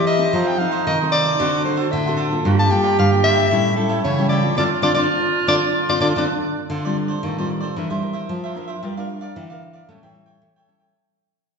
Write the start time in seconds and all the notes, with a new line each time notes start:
Already playing: E3 C4 G4 A#4
0.06 E4 A#4 C5 D#5 E5
0.19 C4 D#4 A4
0.33 F3 D#4 F4 A4 C5 D#5
0.47 G5
0.58 C4 D#4 F4 A4 C5 D#5 F5
0.71 F4 A4 C5 D#5
0.87 C3 D#3 D#5
1.01 C4 D#4 A4 C5 D#5
1.12 F4 A4 C5 D5 D#5
1.24 A4 C5 D#5
1.39 D3 C4 D4 F#4 A4 C5 F#5
1.65 C4 D4 F#4 A4 C5 F#5
1.76 D4 A4 C5 F#5
1.92 A2 D3 D4 A4 C5 E5 F#5
2.06 C4 F#4 A4 C5 F#5
2.17 D4 A4 C5 F#5
2.32 A#3 F4 A4
2.45 G2 G3 F4 G4 A#4 D5 G5
2.59 A5
2.70 A#3 F4 A4 A#4 D5 G5
2.83 F4 A#4 D5 G5
2.99 G2 D3 F5
3.12 A#3 F4 A4 A#4 D5 G5
3.23 F4 A#4 D5 E5 G5
3.35 A#4 D5 G5
3.51 A2 G3 C#4 E4 A4 C#5 G5
3.76 G3 C#4 E4 A4 C#5 G5
3.89 E4 A4 C#5 G5
4.04 C#3 E3 E4 A4 C#5 G5
4.18 G3 C#4 E4 A4 C#5 G5
4.29 E4 A4 C#5 D5 G5
4.42 C4 F4 A4
4.56 D3 C4 D4 F4 A4 C5 D5
4.82 D3 C4 D4 F4 A4 C5 D5
4.94 D3 C4 D4 F4 A4 C5 D5
5.47 D3 C4 D4 F4 A4 C5 D5
5.89 D3 C4 D4 F4 A4 C5 D5
6.00 D3 C4 D4 F4 A4 C5 D5
6.16 D3 C4 D4 F4 A4 C5 D5
6.70 D3 F4 A4 C5 D5
6.85 G3 C4 F4 A4 C5 D5
6.97 muted cavaquinho stroke
7.08 A4 C5 D5
7.23 A2 D#3 F4 A4 C5 D5
7.38 G3 C4 F4 A4 C5 D5
7.50 muted cavaquinho stroke
7.60 A4 C5 D5
7.76 E3 D4 E4 A#4 C5 E5
7.90 G3 A#4 C5 E5
8.02 D4 E4 A#4
8.13 A#4 C5 E5
8.29 F3
8.44 A#4 C5 E5
8.55 D4 E4 A#4 C5 E5
8.68 A#4 C5 E5
8.82 G3 D4 F4 G4 A#4 D5 F5
8.97 D4 F4 A#4 D5 F5
9.09 muted cavaquinho stroke
9.21 A#4 D5 F5
9.36 D3 E3 G4 A#4 D5 F5
9.50 D4 A#4 D5 F5
9.62 muted cavaquinho stroke
9.73 A#4 D5 F5
9.89 A2 G3 A3 C#4 E4 A4 C#5 G5
10.03 E3 A4 C#5 G5
10.15 G3 C#4 E4
10.26 A4 C#5 G5
10.42 E3 A3
10.56 A4 C#5 G5
10.67 G3 C#4 E4 A4 C#5 G5
10.80 A4 C#5 G5